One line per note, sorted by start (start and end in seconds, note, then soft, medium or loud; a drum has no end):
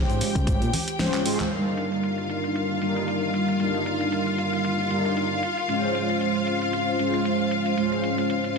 0.00 0.70 G#3 medium
0.00 0.70 C#4 medium
0.00 0.71 F4 medium
0.00 1.53 G4 medium
0.00 0.71 C5 medium
0.00 1.53 G5 medium
0.09 0.21 G#2 medium
0.09 closed hi-hat soft
0.09 shaker soft
0.21 muted fingered electric bass stroke soft
0.21 open hi-hat loud
0.21 shaker medium
0.35 0.46 C#3 medium
0.35 kick medium
0.35 closed hi-hat soft
0.35 high conga medium
0.35 shaker soft
0.47 0.56 G#1 medium
0.47 kick loud
0.47 closed hi-hat medium
0.47 shaker medium
0.62 0.69 A#2 medium
0.62 closed hi-hat soft
0.62 shaker soft
0.73 open hi-hat loud
0.73 low conga medium
0.73 shaker medium
0.88 closed hi-hat medium
0.88 shaker soft
0.98 1.22 G#3 medium
0.98 1.22 C#4 medium
0.98 1.23 F4 medium
0.98 1.23 C5 loud
0.98 snare loud
0.98 open hi-hat medium
0.98 high conga medium
0.98 shaker soft
1.14 clap medium
1.14 closed hi-hat soft
1.14 shaker soft
1.25 1.48 G#3 loud
1.25 1.49 C#4 medium
1.25 1.49 F4 medium
1.25 1.49 C5 loud
1.25 open hi-hat loud
1.25 shaker medium
1.39 clap loud
1.39 closed hi-hat medium
1.39 low conga medium
1.39 shaker soft
1.50 2.79 G3 medium
1.50 2.79 D4 medium
1.50 2.79 D#4 medium
1.50 8.58 F4 medium
1.50 2.80 A#4 medium
1.50 8.58 F5 medium
1.50 closed hi-hat medium
1.50 crash medium
1.66 closed hi-hat soft
1.77 closed hi-hat medium
1.92 closed hi-hat soft
2.03 closed hi-hat medium
2.18 closed hi-hat soft
2.30 closed hi-hat medium
2.44 closed hi-hat soft
2.56 closed hi-hat medium
2.81 3.57 G3 medium
2.81 3.57 D4 medium
2.81 3.58 D#4 medium
2.81 3.58 A#4 medium
2.81 closed hi-hat medium
2.96 closed hi-hat soft
3.08 closed hi-hat medium
3.34 closed hi-hat medium
3.48 closed hi-hat soft
3.59 4.87 G3 medium
3.59 4.88 D4 medium
3.59 4.88 D#4 medium
3.59 4.88 A#4 medium
3.59 closed hi-hat medium
3.74 closed hi-hat soft
3.86 closed hi-hat medium
4.01 closed hi-hat soft
4.12 closed hi-hat medium
4.27 closed hi-hat soft
4.38 closed hi-hat medium
4.53 closed hi-hat soft
4.65 closed hi-hat medium
4.90 5.41 G3 medium
4.90 5.41 D4 medium
4.90 5.41 D#4 medium
4.90 5.42 A#4 medium
4.90 closed hi-hat medium
5.05 closed hi-hat soft
5.17 closed hi-hat medium
5.43 closed hi-hat medium
5.57 closed hi-hat soft
5.68 6.96 G#3 medium
5.68 6.96 C#4 medium
5.68 6.97 F4 medium
5.68 6.97 C5 medium
5.68 closed hi-hat medium
5.83 closed hi-hat soft
5.95 closed hi-hat medium
6.09 closed hi-hat soft
6.21 closed hi-hat medium
6.35 closed hi-hat soft
6.47 closed hi-hat medium
6.62 closed hi-hat soft
6.73 closed hi-hat medium
6.98 7.74 G#3 medium
6.98 7.75 C#4 medium
6.98 7.75 F4 medium
6.98 7.75 C5 medium
6.98 closed hi-hat medium
7.14 closed hi-hat soft
7.25 closed hi-hat medium
7.51 closed hi-hat medium
7.66 closed hi-hat soft
7.77 8.58 G#3 medium
7.77 8.58 C#4 medium
7.77 8.58 F4 medium
7.77 8.58 C5 medium
7.77 closed hi-hat medium
7.92 closed hi-hat soft
8.04 closed hi-hat medium
8.18 closed hi-hat soft
8.30 closed hi-hat medium
8.44 closed hi-hat soft